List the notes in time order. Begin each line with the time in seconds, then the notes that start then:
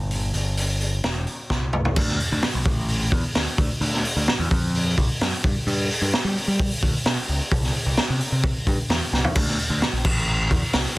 Already playing: G1
0.11 open hi-hat
0.34 G1, open hi-hat
0.57 open hi-hat
0.81 open hi-hat
1.04 E1, snare, open hi-hat
1.27 open hi-hat
1.50 C2, kick, snare
1.73 mid tom
1.85 floor tom
1.96 D2, kick, crash
2.09 snare
2.20 open hi-hat
2.32 D2
2.42 snare, open hi-hat
2.55 B1
2.65 A1, kick, open hi-hat
2.88 open hi-hat
3.12 E2, kick
3.35 D2, snare, open hi-hat
3.58 D2, kick, open hi-hat
3.81 D2, open hi-hat
3.94 snare
4.05 open hi-hat
4.16 D2
4.28 snare, open hi-hat
4.40 E2
4.51 F2, kick, open hi-hat
4.75 open hi-hat
4.98 C2, kick, open hi-hat
5.21 F#2, snare, open hi-hat
5.44 G2, kick, open hi-hat
5.67 G2, open hi-hat
5.90 open hi-hat
6.02 G2
6.13 snare, open hi-hat
6.25 G3
6.37 open hi-hat
6.48 G3
6.59 kick, open hi-hat
6.83 D2, kick, open hi-hat
7.05 B2, snare, open hi-hat
7.29 C#2, open hi-hat
7.52 C2, kick, open hi-hat
7.63 snare
7.74 open hi-hat
7.86 C2
7.97 snare, open hi-hat
8.10 C3
8.21 open hi-hat
8.32 C3
8.43 kick, open hi-hat
8.67 G2, kick, open hi-hat
8.90 E2, snare, open hi-hat
9.13 C2, snare
9.24 floor tom
9.35 D2, kick, open hi-hat, crash
9.48 snare
9.59 open hi-hat
9.70 D2
9.82 snare, open hi-hat
9.93 A#1
10.05 A1, kick, crash
10.51 E2, kick, open hi-hat
10.73 C2, snare, open hi-hat